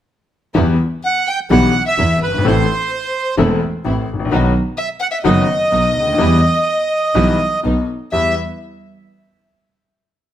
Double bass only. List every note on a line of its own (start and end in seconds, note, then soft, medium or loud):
0.55 0.75 E2 medium
1.51 1.70 B1 medium
1.98 2.18 E2 medium
2.22 2.44 G1 soft
2.45 2.64 A1 medium
3.39 3.58 E1 medium
3.86 4.05 A1 medium
4.09 4.32 A1 soft
4.33 4.51 B1 medium
5.26 5.45 F#1 medium
5.73 5.92 B1 soft
5.96 6.19 D2 soft
6.20 6.39 E2 medium
7.15 7.36 B1 medium
7.65 7.85 B1 medium
8.13 8.33 E2 soft